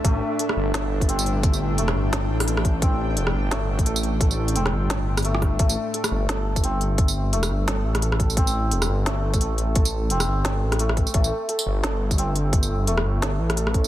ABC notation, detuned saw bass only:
X:1
M:4/4
L:1/16
Q:"Swing 16ths" 1/4=173
K:Am
V:1 name="Detuned saw bass" clef=bass
A,,,2 z4 G,,,8- G,,,2- | G,,,4 E,,,2 G,,,4 A,,,6- | A,,,4 E,,,2 G,,,4- G,,, A,,,4- A,,,- | A,,,4 E,,,2 G,,,8- G,,,2 |
A,,,2 z4 G,,,8- G,,,2- | G,,,4 E,,,2 G,,,4 A,,,6- | A,,,4 E,,,2 G,,,4- G,,, A,,,4- A,,,- | A,,,4 E,,,2 G,,,4 A,,,4- A,,, z |
A,,,2 z4 G,,,8- G,,,2- | G,,,4 E,,,2 G,,,4 A,,,6 |]